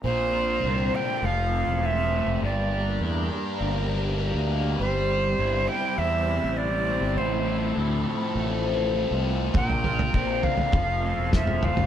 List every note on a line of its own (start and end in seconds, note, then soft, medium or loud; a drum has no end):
0.04 0.59 A#1 medium
0.04 1.23 A#2 medium
0.04 1.21 A#3 medium
0.04 2.39 C4 medium
0.04 1.22 D4 medium
0.04 1.20 F4 medium
0.04 1.21 A#4 medium
0.04 0.97 C5 medium
0.33 1.22 F4 medium
0.64 0.90 C2 medium
0.64 1.23 C4 medium
0.94 1.23 D3 soft
0.94 1.27 G5 medium
1.21 1.63 F1 medium
1.21 1.81 F3 medium
1.21 2.40 A3 medium
1.21 2.39 F4 medium
1.21 2.40 A4 medium
1.21 1.87 F5 medium
1.53 2.42 C4 medium
1.67 2.22 E1 medium
1.82 2.41 F3 medium
1.82 2.43 E5 medium
2.12 2.41 A3 medium
2.26 2.40 F1 medium
2.40 2.97 G1 medium
2.40 3.90 G2 medium
2.40 4.76 G3 medium
2.40 4.76 A#3 medium
2.40 4.76 D4 medium
2.40 4.76 G4 medium
2.40 4.76 A#4 medium
2.44 2.98 D5 medium
2.71 4.19 G4 medium
3.00 3.27 E2 medium
3.00 3.88 D4 medium
3.31 4.18 G3 medium
3.60 4.30 G1 medium
3.60 4.49 A#3 medium
3.90 4.79 D4 medium
4.20 4.79 G3 medium
4.34 4.75 D2 medium
4.50 4.79 A#3 medium
4.79 5.34 G1 medium
4.79 7.15 G3 medium
4.79 5.68 G3 medium
4.79 9.51 C4 medium
4.79 9.52 E4 medium
4.79 7.16 G4 medium
4.79 5.70 C5 medium
4.79 7.15 C5 medium
5.10 6.58 G4 medium
5.39 5.66 G1 medium
5.39 6.27 E4 medium
5.68 6.56 G3 medium
5.68 6.00 G5 medium
5.98 6.39 E2 medium
5.98 6.86 C4 medium
5.98 6.59 E5 medium
6.28 7.17 E4 medium
6.44 6.98 A1 medium
6.57 7.17 G3 medium
6.57 7.19 D5 medium
6.86 7.75 C4 medium
7.01 7.15 G1 medium
7.16 7.72 A1 medium
7.16 8.65 A2 medium
7.16 11.86 F3 medium
7.16 9.52 A3 medium
7.16 9.52 A4 medium
7.16 7.77 C5 medium
7.46 8.95 E4 medium
7.75 8.04 D2 medium
7.75 8.64 C4 medium
8.06 8.95 F3 medium
8.35 9.06 A1 medium
8.35 9.23 A3 medium
8.65 9.54 C4 medium
8.97 9.55 F3 medium
9.11 9.51 C2 medium
9.24 9.54 A3 medium
9.54 10.10 A#1 medium
9.54 10.73 A#2 medium
9.54 10.73 A#3 medium
9.54 11.86 C4 medium
9.54 10.73 D4 medium
9.54 10.73 A#4 medium
9.54 10.45 G5 medium
9.54 kick medium
9.54 floor tom medium
9.69 floor tom medium
9.84 10.74 F4 medium
9.84 floor tom medium
9.99 floor tom medium
10.14 10.41 A#1 medium
10.14 10.74 C4 medium
10.14 kick medium
10.43 10.74 D3 medium
10.43 11.33 F5 medium
10.43 floor tom medium
10.57 floor tom medium
10.72 11.15 F1 medium
10.72 11.33 F3 medium
10.72 11.86 A3 medium
10.72 11.86 F4 medium
10.72 11.86 A4 medium
10.72 kick medium
10.72 floor tom medium
11.04 11.86 C4 medium
11.18 11.74 E1 medium
11.33 11.86 F3 medium
11.33 11.66 E5 medium
11.33 kick loud
11.33 snare medium
11.47 mid tom medium
11.62 11.86 A3 medium
11.62 11.86 F5 medium
11.62 floor tom medium
11.62 mid tom medium
11.77 11.86 F1 medium
11.77 floor tom medium
11.77 mid tom medium